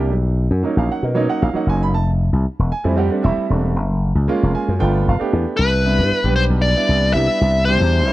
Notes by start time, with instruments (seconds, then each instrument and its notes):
Already playing: slap bass C2, grand piano G3 A#3 D4 G4
0.12 slap bass B1
0.51 slap bass F#2
0.63 grand piano F#3 A#3 C#4 D#4
0.77 slap bass A#1, grand piano F5
0.92 grand piano F#5
1.03 slap bass B2, grand piano A#4
1.14 grand piano F#3 A#3 C#4 D#4 C#5
1.30 grand piano F#5
1.42 slap bass A#1, grand piano F5
1.53 grand piano F#3 A#3 C#4 D#4 F#5, muted slap bass stroke
1.67 slap bass F#1, grand piano G#5
1.83 grand piano B5
1.93 slap bass F1, grand piano A5
2.33 slap bass C2
2.59 slap bass E1
2.72 grand piano G#5
2.84 slap bass F2, grand piano G3 A3 C4 E4
2.96 grand piano G3 A3 C4 G4 F#5
3.10 grand piano G3 A3 C4 D4
3.23 slap bass E1, grand piano G3 A3 C4 E4 E5
3.37 muted slap bass stroke
3.49 slap bass E1, grand piano G3 A3 C4 D4
3.76 slap bass F#1
4.15 slap bass C#2
4.28 grand piano G#3 A#3 C#4 F4
4.43 slap bass F1
4.55 grand piano G#5
4.68 slap bass F#2
4.79 slap bass G1, grand piano A3 B3 D4 F4 G5
5.08 slap bass F1, grand piano F5
5.19 grand piano A3 B3 D4 G4, muted slap bass stroke
5.33 slap bass E2
5.57 slap bass C2, lead electric guitar B4
5.84 grand piano G3 B3 D4 E4
5.99 slap bass G2
6.11 muted slap bass stroke
6.24 slap bass B1, grand piano G3 B3 D4 G4
6.36 lead electric guitar C5
6.50 slap bass B1
6.62 lead electric guitar D5
6.76 grand piano G3 B3 D4 E4
6.89 slap bass C2
7.13 slap bass C2, grand piano G3 B3 D4 E4, lead electric guitar E5
7.41 slap bass C2
7.65 grand piano B2 G3 D4 G4, lead electric guitar C5
7.81 slap bass E2
8.06 slap bass B1, grand piano G3 B3 D4 E4